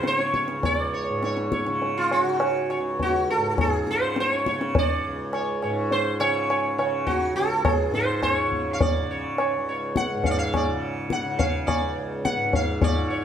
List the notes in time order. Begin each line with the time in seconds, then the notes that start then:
Already playing: C#2 G#2 C#3
0.03 C5, tabla te
0.18 C#5, tabla te
0.34 C#5, tabla ke
0.48 C#2, tabla te
0.63 D5, tabla tin, tabla ge
0.94 C#5
1.10 G#2
1.23 C#5, tabla te
1.37 tabla te
1.52 C#5, tabla ke
1.67 C#3, tabla te
1.82 tabla tin
1.98 F4
2.11 F#4, tabla na
2.25 C#3
2.40 tabla na
2.70 C#5, tabla na
2.80 C#2
3.00 F#4, tabla tin, tabla ge
3.30 A4
3.37 G#2
3.58 G#4, tabla na, tabla ge
3.87 C5, tabla te
3.94 C#3
4.16 C5, tabla te
4.31 C#5, tabla te
4.46 C#5, tabla ke
4.52 C#3
4.61 tabla te
4.75 D5, tabla tin, tabla ge
5.08 C#2
5.33 C#5, tabla na
5.62 G#2 C#5, tabla na
5.91 C5, tabla tin
6.20 C#3 C#5, tabla na
6.50 C#5, tabla na
6.78 C#3 C#5, tabla na
7.07 F#4, tabla tin, tabla ge
7.34 C#2 A4
7.65 G#4, tabla na, tabla ge
7.89 G#2
7.94 C5, tabla te
8.23 C#5, tabla na, tabla ge
8.47 C#3
8.52 tabla ge
8.73 F5
8.81 D5, tabla tin, tabla ge
9.03 C#3
9.11 C#5
9.38 C#5, tabla na
9.58 C#2
9.69 C#5
9.96 F#5, tabla ke
10.15 G#2
10.24 F5, tabla tin, tabla ge
10.31 D5
10.39 F5
10.54 D5, tabla na, tabla ge
10.69 C#3
11.10 F#5, tabla ke
11.25 C#3
11.39 F5, tabla tin, tabla ge
11.67 D5, tabla na, tabla ge
11.81 C#2
12.25 F#5, tabla ke
12.36 G#2
12.53 F5, tabla tin, tabla ge
12.81 G#2 C#5 D5, tabla tin, tabla ge
13.10 C#5